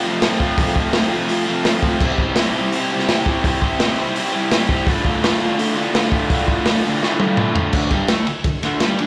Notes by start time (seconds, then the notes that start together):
0.04 F3 A3 C4 F4
0.08 F2 C3
0.21 F3 A3 C4, snare, open hi-hat
0.25 F4
0.39 A3 C4 F4, kick
0.44 F3
0.58 F2 C3 F3 A3, kick, open hi-hat
0.62 C4 F4
0.76 A3 C4 F4, kick
0.81 F3
0.93 F3 A3 C4, snare, open hi-hat
0.98 F4
1.11 F3 A3 C4 F4
1.15 F2 C3
1.28 F3 A3 C4, open hi-hat
1.33 F4
1.46 F3 A3 C4 F4
1.50 F2 C3
1.65 F3 A3 C4, snare, open hi-hat
1.69 F4
1.83 C4 F4, kick
1.87 F3 A3
2.01 C3 G3 C4 E4, kick, crash
2.05 G4 C5
2.18 G4 C5, kick
2.23 C4 E4
2.36 C4 E4, snare, open hi-hat
2.40 G4 C5
2.55 G3 C4 E4 G4 C5
2.60 C3
2.72 C4 E4 G4, open hi-hat
2.79 C5
2.91 C4 E4 G4 C5
2.95 C3 G3
3.00 snare
3.08 C4 E4 G4, snare, open hi-hat
3.13 C5
3.25 E4 G4 C5, kick
3.30 C4
3.42 C3 G3 C4 E4, kick, open hi-hat
3.46 G4 C5
3.61 E4 G4 C5, kick
3.66 C4
3.79 C4 E4 G4, snare, open hi-hat
3.83 C5
3.98 G3 C4 E4 G4 C5
4.04 C3
4.15 C4 E4 G4, open hi-hat
4.20 C5
4.32 C4 E4 G4 C5
4.36 C3 G3
4.51 C4 E4 G4, snare, open hi-hat
4.55 C5
4.68 G4 C5, kick
4.72 C4 E4
4.86 D2 A2 D3 A3, kick, open hi-hat
4.91 F4
5.04 A3 F4, kick
5.09 D3
5.22 A2 D3 A3, snare, open hi-hat
5.27 F4
5.39 A2 D3 A3 F4
5.44 D2
5.56 A2 D3, open hi-hat
5.60 A3 F4
5.75 A2 D3 A3 F4
5.80 D2
5.93 A2 D3 A3, snare, open hi-hat
5.98 F4
6.09 A3 F4, kick
6.14 D3
6.28 D2 A2 D3 A3, kick, open hi-hat
6.33 F4
6.46 A3 F4, kick
6.51 D3
6.64 A2 D3 A3, snare, open hi-hat
6.69 F4
6.83 A2 D3 A3 F4
6.88 D2
7.02 A2 D3 A3, snare
7.06 F4
7.19 D3 A3 F4, high tom
7.24 D2 A2
7.36 A2 D3 A3, mid tom
7.41 F4
7.55 A3 F4, floor tom
7.60 D3
7.73 D2 D3, kick, crash
7.91 G2 G3, kick, ride
8.08 A2 A3, snare, ride
8.27 D2, ride
8.44 D2, kick, ride
8.63 D2 D3, snare, ride
8.80 G2, snare, ride
8.85 G3
8.99 D2 D3, ride